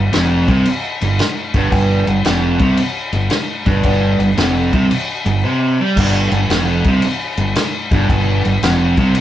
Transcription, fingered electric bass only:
0.00 0.12 G1 medium
0.14 0.46 F1 medium
0.48 0.64 C2 loud
0.68 muted fingered electric bass stroke soft
1.02 1.18 G1 medium
1.54 1.71 G1 medium
1.72 2.05 G1 loud
2.08 2.24 G1 medium
2.26 2.58 F1 medium
2.60 2.77 C2 loud
2.78 muted fingered electric bass stroke soft
3.13 3.29 G1 medium
3.66 3.83 G1 medium
3.84 4.17 G1 loud
4.19 4.36 G1 medium
4.38 4.70 F1 medium
4.72 4.89 C2 medium
4.91 muted fingered electric bass stroke soft
5.26 5.42 G1 medium
5.96 6.29 G1 loud
6.32 6.48 G1 medium
6.49 6.82 F1 medium
6.85 7.01 C2 loud
7.02 muted fingered electric bass stroke soft
7.38 7.54 G1 medium
7.92 8.08 G1 medium
8.09 8.42 G1 loud
8.46 8.61 G1 medium
8.62 8.95 F1 medium
8.98 9.14 C2 medium
9.15 muted fingered electric bass stroke soft

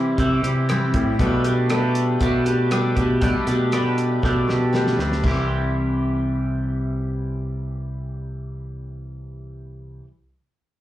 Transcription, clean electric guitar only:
0.00 0.17 E3 medium
0.00 0.19 G3 medium
0.00 0.18 E4 medium
0.00 0.19 G4 medium
0.18 0.68 C3 medium
0.18 0.67 E3 medium
0.18 0.45 G3 medium
0.18 0.43 E4 medium
0.18 0.43 G4 medium
0.44 0.69 G3 soft
0.44 0.69 E4 medium
0.44 0.70 G4 medium
0.68 1.17 E3 medium
0.68 0.96 G3 medium
0.68 0.94 E4 medium
0.68 0.94 G4 medium
0.94 1.19 G3 medium
0.94 1.18 E4 medium
0.94 1.21 G4 medium
1.19 1.74 B2 medium
1.19 1.69 G3 medium
1.19 1.46 A3 medium
1.19 1.46 D4 medium
1.19 1.44 G4 medium
1.45 1.71 A3 medium
1.45 1.71 D4 medium
1.45 1.72 G4 medium
1.70 2.21 G3 medium
1.70 2.20 A3 medium
1.70 2.21 D4 medium
1.70 2.22 G4 medium
2.21 2.71 B2 medium
2.21 2.71 G3 medium
2.21 2.46 A3 medium
2.21 2.45 D4 medium
2.21 2.45 G4 medium
2.45 2.71 A3 soft
2.45 2.72 D4 medium
2.45 2.73 G4 medium
2.71 3.21 G3 medium
2.71 2.97 A3 medium
2.71 2.96 D4 medium
2.71 2.95 G4 medium
2.96 3.21 A3 medium
2.96 3.21 D4 medium
2.96 3.22 G4 medium
3.21 3.72 B2 medium
3.21 3.71 G3 medium
3.21 3.48 A3 medium
3.21 3.47 D4 medium
3.21 3.45 G4 medium
3.47 3.72 A3 soft
3.47 3.72 D4 medium
3.47 3.73 G4 medium
3.72 4.22 G3 medium
3.72 4.23 A3 medium
3.72 4.24 D4 medium
3.72 4.24 G4 medium
4.23 4.73 B2 medium
4.23 4.73 G3 medium
4.23 4.50 A3 medium
4.23 4.48 D4 medium
4.23 4.47 G4 medium
4.49 4.74 A3 soft
4.49 4.74 D4 medium
4.49 4.75 G4 medium
4.74 5.23 G3 medium
4.74 5.00 A3 medium
4.74 4.99 D4 medium
4.74 4.98 G4 medium
4.99 5.24 A3 soft
4.99 5.23 D4 medium
4.99 5.22 G4 medium
5.24 10.04 C3 medium
5.24 10.05 E3 medium
5.24 10.06 G3 medium
5.24 10.07 E4 medium
5.24 10.07 G4 medium

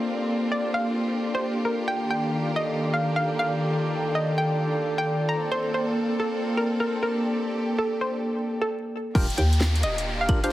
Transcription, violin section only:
0.00 1.84 C4 medium
0.00 8.66 D4 medium
0.00 7.07 F4 medium
0.00 5.25 G4 medium
1.88 5.25 A#3 medium
5.29 8.66 C4 medium
5.29 8.66 A4 medium
7.11 8.68 G4 medium
9.15 10.52 A#3 medium
9.15 10.52 D4 medium
9.15 10.52 F4 medium
9.15 10.52 G4 loud

